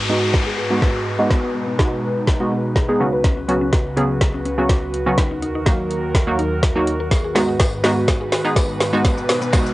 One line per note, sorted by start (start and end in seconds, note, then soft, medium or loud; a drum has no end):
0.00 1.29 G#2 medium
0.00 2.96 G#3 medium
0.00 1.29 F#4 medium
0.00 5.14 B4 medium
0.00 downlifter medium
0.09 0.55 G#3 loud
0.09 0.55 B3 medium
0.09 0.55 D#4 medium
0.09 0.55 F#4 loud
0.34 kick loud
0.34 snare medium
0.47 0.55 G#4 medium
0.58 0.68 G#4 medium
0.70 1.06 G#3 medium
0.70 1.06 B3 medium
0.70 1.06 D#4 medium
0.70 1.06 F#4 loud
0.82 0.92 B4 loud
0.82 kick loud
0.82 snare medium
1.19 1.30 G#3 loud
1.19 1.31 B3 medium
1.19 1.31 D#4 medium
1.19 1.31 F#4 loud
1.19 1.28 D#5 loud
1.30 2.98 B2 medium
1.30 1.40 B3 medium
1.30 2.98 D#4 medium
1.30 kick loud
1.30 snare medium
1.44 1.52 B3 medium
1.55 1.65 B3 medium
1.67 1.76 B3 medium
1.79 2.24 G#3 medium
1.79 2.24 B3 medium
1.79 2.24 D#4 medium
1.79 2.24 F#4 loud
1.79 1.89 G#4 medium
1.79 kick loud
1.79 snare medium
2.27 kick loud
2.27 snare medium
2.40 2.76 G#3 loud
2.40 2.76 B3 medium
2.40 2.49 B3 medium
2.40 2.76 D#4 medium
2.40 2.76 F#4 loud
2.52 2.61 B3 medium
2.76 2.86 G#4 medium
2.76 kick loud
2.76 snare medium
2.88 3.00 G#3 loud
2.88 2.99 B3 loud
2.88 3.00 D#4 medium
2.88 3.00 G#4 loud
3.00 5.16 C#2 medium
3.00 3.39 C#3 loud
3.00 5.16 C#3 medium
3.00 3.39 F#3 medium
3.00 3.39 B3 medium
3.00 3.39 C#4 medium
3.00 9.01 F#4 medium
3.00 3.40 F#4 loud
3.13 3.21 B4 loud
3.24 3.34 C#4 medium
3.24 kick loud
3.24 snare medium
3.24 closed hi-hat medium
3.37 3.46 C#4 medium
3.48 3.85 C#3 medium
3.48 3.85 F#3 medium
3.48 3.85 B3 medium
3.48 3.58 C#4 medium
3.48 3.85 C#4 medium
3.48 3.85 F#4 loud
3.48 closed hi-hat soft
3.61 3.70 C#4 medium
3.73 3.82 F#4 medium
3.73 kick loud
3.73 snare medium
3.73 closed hi-hat medium
3.97 4.42 C#3 loud
3.97 4.42 F#3 medium
3.97 4.42 B3 medium
3.97 4.42 C#4 medium
3.97 4.42 G#4 loud
3.97 closed hi-hat medium
4.21 kick loud
4.21 snare medium
4.21 closed hi-hat medium
4.34 4.43 C#4 medium
4.45 4.55 C#4 medium
4.45 closed hi-hat soft
4.58 4.93 C#3 medium
4.58 4.93 F#3 medium
4.58 4.93 B3 medium
4.58 4.94 C#4 medium
4.58 4.94 F#4 loud
4.69 4.79 F#4 medium
4.69 kick loud
4.69 snare medium
4.69 closed hi-hat medium
4.94 closed hi-hat medium
5.06 5.18 C#3 loud
5.06 5.18 F#3 medium
5.06 5.18 B3 medium
5.06 5.18 C#4 medium
5.06 5.18 F#4 loud
5.06 5.15 B4 loud
5.18 7.09 D#2 medium
5.18 7.10 D#3 medium
5.18 5.28 D#4 medium
5.18 7.10 A#4 medium
5.18 kick loud
5.18 snare medium
5.18 closed hi-hat medium
5.31 5.40 D#4 medium
5.42 5.52 D#4 medium
5.42 closed hi-hat medium
5.55 5.64 D#4 medium
5.66 6.11 F#3 loud
5.66 6.11 A#3 medium
5.66 6.11 D#4 medium
5.66 6.12 F#4 loud
5.66 5.76 F#4 medium
5.66 kick loud
5.66 snare medium
5.66 closed hi-hat medium
5.91 closed hi-hat medium
6.15 kick loud
6.15 snare medium
6.15 closed hi-hat medium
6.27 6.63 F#3 medium
6.27 6.63 A#3 medium
6.27 6.63 D#4 medium
6.27 6.36 D#4 medium
6.27 6.63 F#4 loud
6.39 6.49 D#4 medium
6.39 closed hi-hat medium
6.63 6.73 F#4 medium
6.63 kick loud
6.63 snare medium
6.63 closed hi-hat medium
6.75 7.11 F#3 loud
6.75 7.11 A#3 medium
6.75 7.11 D#4 loud
6.75 7.11 F#4 loud
6.87 closed hi-hat medium
7.00 7.09 A#4 loud
7.11 9.03 G#2 medium
7.11 9.03 D#3 medium
7.11 7.21 G#4 medium
7.11 9.74 B4 medium
7.11 kick loud
7.11 snare medium
7.11 closed hi-hat medium
7.11 tambourine medium
7.11 riser medium
7.24 7.33 G#4 medium
7.35 7.72 G#3 loud
7.35 7.72 B3 medium
7.35 7.72 D#4 medium
7.35 7.72 F#4 loud
7.35 7.45 G#4 medium
7.35 snare medium
7.35 open hi-hat medium
7.35 tambourine soft
7.49 7.57 G#4 medium
7.60 7.70 B4 medium
7.60 kick loud
7.60 snare medium
7.60 closed hi-hat medium
7.60 tambourine medium
7.73 tambourine soft
7.84 8.29 G#3 loud
7.84 8.29 B3 medium
7.84 8.29 D#4 medium
7.84 8.29 F#4 loud
7.84 snare medium
7.84 open hi-hat medium
7.84 tambourine medium
8.08 kick loud
8.08 snare medium
8.08 closed hi-hat medium
8.08 tambourine medium
8.21 8.30 G#4 medium
8.32 8.42 G#4 medium
8.32 snare medium
8.32 open hi-hat medium
8.32 tambourine medium
8.45 8.80 G#3 medium
8.45 8.80 B3 medium
8.45 8.80 D#4 medium
8.45 8.81 G#4 loud
8.45 tambourine soft
8.56 8.66 B4 loud
8.56 kick loud
8.56 snare medium
8.56 closed hi-hat medium
8.56 tambourine medium
8.80 snare loud
8.80 open hi-hat medium
8.80 tambourine soft
8.93 9.05 G#3 loud
8.93 9.05 B3 medium
8.93 9.05 D#4 medium
8.93 9.05 F#4 loud
8.93 9.02 D#5 loud
8.93 tambourine soft
9.05 9.74 B2 medium
9.05 9.74 G#3 medium
9.05 9.15 B3 medium
9.05 9.74 D#4 medium
9.05 kick loud
9.05 snare medium
9.05 closed hi-hat medium
9.05 tambourine soft
9.05 shaker medium
9.18 9.26 B3 medium
9.18 shaker medium
9.29 9.39 B3 medium
9.29 snare medium
9.29 open hi-hat medium
9.29 tambourine soft
9.29 shaker medium
9.42 9.51 B3 medium
9.42 shaker medium
9.53 9.74 G#3 medium
9.53 9.74 B3 medium
9.53 9.74 D#4 medium
9.53 9.74 F#4 loud
9.53 9.63 G#4 medium
9.53 kick loud
9.53 snare loud
9.53 closed hi-hat medium
9.53 tambourine medium
9.53 shaker medium
9.66 tambourine soft
9.66 shaker medium